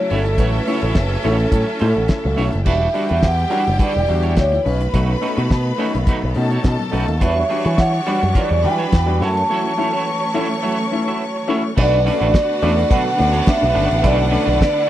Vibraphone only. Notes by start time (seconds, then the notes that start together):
Already playing: C#5
0.10 A4
0.39 B4
1.26 A4
2.68 E5
3.26 F#5
3.82 D5
4.39 C#5
4.68 B4
7.23 E5
7.79 F#5
8.38 D5
8.65 G5
9.24 A5
11.81 D5
12.08 D5
12.91 F#5
13.48 E5
14.04 D5
14.62 D5